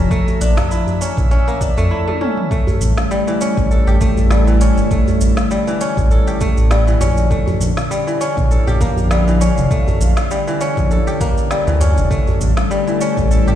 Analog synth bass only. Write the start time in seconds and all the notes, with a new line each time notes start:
0.41 A#1
1.17 A#1
1.77 F2
2.81 A1
3.57 A1
3.87 A1
4.01 A1
4.77 G1
5.21 A1
5.97 A1
6.57 A1
7.01 A#1
7.61 A#1
8.37 A#1
8.67 A#1
8.81 A#1
9.57 F1
10.01 A#1
10.77 A#1
11.67 D2
11.97 F1
12.41 A1
13.17 A1
13.47 A1